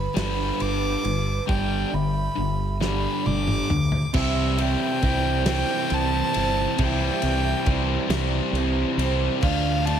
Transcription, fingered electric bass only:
0, 0, Header, 1, 2, 480
1, 0, Start_track
1, 0, Tempo, 882353
1, 812, Time_signature, 6, 3, 24, 8
1, 5438, End_track
2, 0, Start_track
2, 0, Title_t, "Fingered electric bass"
2, 0, Program_c, 0, 33
2, 87, Note_on_c, 0, 31, 82
2, 274, Note_off_c, 0, 31, 0
2, 332, Note_on_c, 0, 31, 88
2, 516, Note_off_c, 0, 31, 0
2, 571, Note_on_c, 0, 31, 89
2, 756, Note_off_c, 0, 31, 0
2, 810, Note_on_c, 0, 31, 93
2, 996, Note_off_c, 0, 31, 0
2, 1049, Note_on_c, 0, 31, 96
2, 1235, Note_off_c, 0, 31, 0
2, 1289, Note_on_c, 0, 31, 86
2, 1660, Note_off_c, 0, 31, 0
2, 1776, Note_on_c, 0, 31, 93
2, 1959, Note_off_c, 0, 31, 0
2, 2015, Note_on_c, 0, 38, 87
2, 2199, Note_off_c, 0, 38, 0
2, 2256, Note_on_c, 0, 36, 100
2, 2581, Note_off_c, 0, 36, 0
2, 2735, Note_on_c, 0, 36, 91
2, 3060, Note_off_c, 0, 36, 0
2, 3216, Note_on_c, 0, 36, 96
2, 3377, Note_off_c, 0, 36, 0
2, 3458, Note_on_c, 0, 31, 92
2, 3619, Note_off_c, 0, 31, 0
2, 3693, Note_on_c, 0, 36, 108
2, 3855, Note_off_c, 0, 36, 0
2, 3932, Note_on_c, 0, 36, 97
2, 4094, Note_off_c, 0, 36, 0
2, 4168, Note_on_c, 0, 36, 93
2, 4331, Note_off_c, 0, 36, 0
2, 4400, Note_on_c, 0, 36, 85
2, 4566, Note_off_c, 0, 36, 0
2, 4638, Note_on_c, 0, 36, 105
2, 4804, Note_off_c, 0, 36, 0
2, 4881, Note_on_c, 0, 36, 100
2, 5046, Note_off_c, 0, 36, 0
2, 5128, Note_on_c, 0, 38, 101
2, 5438, Note_off_c, 0, 38, 0
2, 5438, End_track
0, 0, End_of_file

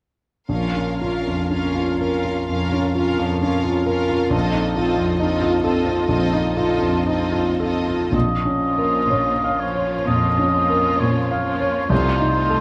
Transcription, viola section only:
0, 0, Header, 1, 2, 480
1, 0, Start_track
1, 0, Key_signature, -5, "minor"
1, 0, Tempo, 1001669
1, 236, Time_signature, 4, 2, 24, 8
1, 1194, Tempo, 921659
1, 2154, Tempo, 883652
1, 3114, Tempo, 983607
1, 3594, Tempo, 1054482
1, 4074, Tempo, 978793
1, 4554, Tempo, 941915
1, 5514, Tempo, 904977
1, 6364, End_track
2, 0, Start_track
2, 0, Title_t, "Viola section"
2, 0, Program_c, 0, 48
2, 239, Note_on_c, 0, 61, 29
2, 239, Note_on_c, 0, 65, 30
2, 475, Note_off_c, 0, 61, 0
2, 475, Note_off_c, 0, 65, 0
2, 481, Note_on_c, 0, 61, 27
2, 481, Note_on_c, 0, 65, 25
2, 716, Note_off_c, 0, 61, 0
2, 717, Note_off_c, 0, 65, 0
2, 722, Note_on_c, 0, 61, 34
2, 722, Note_on_c, 0, 65, 32
2, 954, Note_off_c, 0, 61, 0
2, 956, Note_off_c, 0, 65, 0
2, 960, Note_on_c, 0, 61, 27
2, 961, Note_on_c, 0, 65, 27
2, 1187, Note_off_c, 0, 65, 0
2, 1188, Note_off_c, 0, 61, 0
2, 1193, Note_on_c, 0, 65, 32
2, 1195, Note_on_c, 0, 61, 32
2, 1430, Note_off_c, 0, 65, 0
2, 1431, Note_off_c, 0, 61, 0
2, 1436, Note_on_c, 0, 65, 33
2, 1437, Note_on_c, 0, 61, 32
2, 1670, Note_off_c, 0, 61, 0
2, 1673, Note_off_c, 0, 65, 0
2, 1676, Note_on_c, 0, 61, 35
2, 1679, Note_on_c, 0, 65, 36
2, 1912, Note_off_c, 0, 65, 0
2, 1913, Note_off_c, 0, 61, 0
2, 1918, Note_on_c, 0, 65, 38
2, 1920, Note_on_c, 0, 61, 36
2, 2149, Note_off_c, 0, 65, 0
2, 2150, Note_off_c, 0, 61, 0
2, 2155, Note_on_c, 0, 65, 39
2, 2158, Note_on_c, 0, 60, 43
2, 2384, Note_off_c, 0, 65, 0
2, 2385, Note_off_c, 0, 60, 0
2, 2391, Note_on_c, 0, 60, 37
2, 2391, Note_on_c, 0, 65, 37
2, 2619, Note_off_c, 0, 65, 0
2, 2620, Note_off_c, 0, 60, 0
2, 2625, Note_on_c, 0, 65, 45
2, 2626, Note_on_c, 0, 60, 47
2, 2859, Note_off_c, 0, 60, 0
2, 2860, Note_off_c, 0, 65, 0
2, 2866, Note_on_c, 0, 60, 36
2, 2866, Note_on_c, 0, 65, 37
2, 3102, Note_off_c, 0, 65, 0
2, 3105, Note_off_c, 0, 60, 0
2, 3109, Note_on_c, 0, 65, 43
2, 3112, Note_on_c, 0, 60, 40
2, 3338, Note_off_c, 0, 60, 0
2, 3339, Note_off_c, 0, 65, 0
2, 3344, Note_on_c, 0, 60, 37
2, 3345, Note_on_c, 0, 65, 40
2, 3587, Note_off_c, 0, 60, 0
2, 3587, Note_off_c, 0, 65, 0
2, 3593, Note_on_c, 0, 60, 40
2, 3596, Note_on_c, 0, 65, 39
2, 3832, Note_off_c, 0, 60, 0
2, 3833, Note_off_c, 0, 65, 0
2, 3838, Note_on_c, 0, 60, 32
2, 3838, Note_on_c, 0, 65, 33
2, 4070, Note_off_c, 0, 60, 0
2, 4070, Note_off_c, 0, 65, 0
2, 4315, Note_on_c, 0, 53, 29
2, 4315, Note_on_c, 0, 58, 33
2, 4790, Note_off_c, 0, 53, 0
2, 4790, Note_off_c, 0, 58, 0
2, 4796, Note_on_c, 0, 53, 35
2, 4797, Note_on_c, 0, 58, 31
2, 5269, Note_off_c, 0, 53, 0
2, 5269, Note_off_c, 0, 58, 0
2, 5280, Note_on_c, 0, 58, 34
2, 5281, Note_on_c, 0, 53, 36
2, 5740, Note_off_c, 0, 58, 0
2, 5741, Note_off_c, 0, 53, 0
2, 5746, Note_on_c, 0, 58, 37
2, 5747, Note_on_c, 0, 53, 37
2, 5983, Note_off_c, 0, 53, 0
2, 5987, Note_off_c, 0, 58, 0
2, 5989, Note_on_c, 0, 53, 39
2, 5992, Note_on_c, 0, 57, 36
2, 6221, Note_off_c, 0, 53, 0
2, 6225, Note_off_c, 0, 57, 0
2, 6227, Note_on_c, 0, 53, 37
2, 6231, Note_on_c, 0, 57, 40
2, 6364, Note_off_c, 0, 53, 0
2, 6364, Note_off_c, 0, 57, 0
2, 6364, End_track
0, 0, End_of_file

